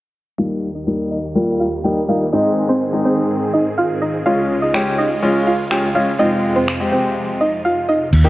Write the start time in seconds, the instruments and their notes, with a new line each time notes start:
0.39 supersaw synth D#2 D#3 A#3 G4, grand piano G3 A#3 D#4, synth pluck F4 F5
0.75 synth pluck D#4 D#5
0.87 grand piano G3 A#3 D#4
1.11 synth pluck D#4 D#5
1.35 grand piano G3 A#3 F4
1.60 synth pluck F4 F5
1.84 grand piano G3 A#3 D#4, synth pluck G4 G5
2.08 grand piano G3 A#3 D#4, synth pluck F4 F5
2.32 supersaw synth G#2 C4 G#4, grand piano G#3 C4 D#4, synth pluck D#4 D#5
2.69 synth pluck C4 C5
2.93 grand piano G#3 C4 D#4
3.05 synth pluck C4 C5
3.53 synth pluck D#4 D#5
3.78 synth pluck F4 F5
4.02 synth pluck D#4 D#5
4.26 supersaw synth C#2 C#3 G#3 F4, grand piano G#3 C#4 F4, synth pluck F4 F5
4.62 synth pluck D#4 D#5
4.74 grand piano G#3 C#4 G4, finger snap
4.99 synth pluck D#4 D#5
5.22 grand piano G#3 C#4 F4
5.47 synth pluck F4 F5
5.71 grand piano G#3 C#4 F4, synth pluck G4 G5, finger snap
5.95 grand piano G#3 C#4 F4, synth pluck F4 F5
6.19 supersaw synth F2 C3, grand piano G#3 C4 F4, synth pluck D#4 D#5
6.56 synth pluck C4 C5
6.68 finger snap
6.80 grand piano G#3 C4 G4
6.92 synth pluck C4 C5
7.41 synth pluck D#4 D#5
7.65 synth pluck F4 F5
7.89 synth pluck D#4 D#5
8.13 fingered electric bass D#2, crash
8.25 grand piano A#3 D#4 G4